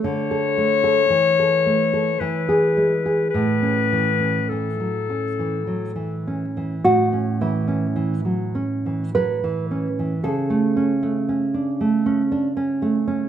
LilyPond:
<<
  \new Staff \with { instrumentName = "Clarinet" } { \time 3/4 \key a \major \tempo 4 = 54 cis''2 b'4 | b'4 a'4. r8 | r2. | r2. | }
  \new Staff \with { instrumentName = "Nylon-string guitar" } { \time 3/4 \key a \major << { r2. | r2. | fis'8 e'4. b'4 | a'2~ a'8 r8 | } \\ { d16 a'16 a16 a'16 e16 a'16 a16 a'16 e16 gis'16 gis16 gis'16 | a,16 cis'16 e16 cis'16 e16 fis16 cis'16 e16 fis16 e16 cis'16 e16 | a,16 cis'16 e16 cis'16 e16 fis16 cis'16 e16 fis16 e16 cis'16 e16 | cis16 a16 cis'16 a16 cis'16 d'16 a16 cis'16 d'16 cis'16 a16 cis'16 | } >> }
>>